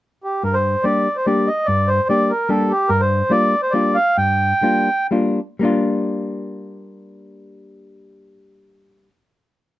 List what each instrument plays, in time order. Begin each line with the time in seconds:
0.24 accordion G4
0.43 hollow-body jazz guitar G2, accordion A#4
0.54 accordion C5
0.83 hollow-body jazz guitar G3 A#3 D4 G4, accordion D5
1.16 accordion C5
1.26 hollow-body jazz guitar G3 A#3 D4 G4, accordion D5
1.47 accordion D#5
1.65 hollow-body jazz guitar G2, accordion D5
1.88 accordion C5
2.09 hollow-body jazz guitar G3 A#3 D4 G4, accordion D5
2.30 accordion A#4
2.49 hollow-body jazz guitar G3 A#3 D4 G4, accordion A4
2.70 accordion G4
2.89 hollow-body jazz guitar G2, accordion A#4
3.01 accordion C5
3.30 hollow-body jazz guitar G3 A#3 D4 F4, accordion D5
3.62 accordion C5
3.71 hollow-body jazz guitar G3 A#3 D4, accordion D5
3.75 hollow-body jazz guitar F4
3.95 accordion F5
4.17 hollow-body jazz guitar G2, accordion G5
4.62 hollow-body jazz guitar G3 A#3 D4 F4
5.11 hollow-body jazz guitar G3 A#3 D4 F4
5.59 hollow-body jazz guitar G3 A#3 D4
5.65 hollow-body jazz guitar F4